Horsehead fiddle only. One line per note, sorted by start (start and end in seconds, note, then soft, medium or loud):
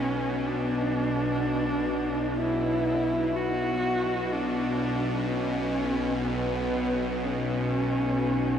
0.00 0.47 C#4 loud
0.46 2.38 D4 loud
2.39 3.37 E4 loud
3.36 4.34 F#4 loud
4.32 5.31 D4 medium
5.29 6.26 C#4 medium
6.24 7.21 B3 medium
7.22 8.59 C#4 medium